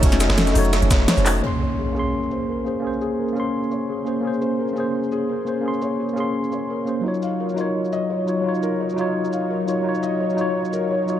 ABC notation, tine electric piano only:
X:1
M:4/4
L:1/8
Q:"Swing 16ths" 1/4=171
K:Bbm
V:1 name="Tine electric piano"
[=A,DEG]3 [A,EGd]4 [A,EGd] | [B,DAc']3 [B,DAc']4 [B,DAc] | [B,DAc]3 [B,DAc']4 [B,DAc] | [B,DAc]3 [B,DAc]4 [B,DAc] |
[B,DAc']3 [B,DAc']4 [B,DAc] | [G,EFd]3 [G,EFd]4 [G,EFd] | [G,EFd]3 [G,EFd]4 [G,EFd] | [G,EFd]3 [G,EFd]4 [G,EFd] |]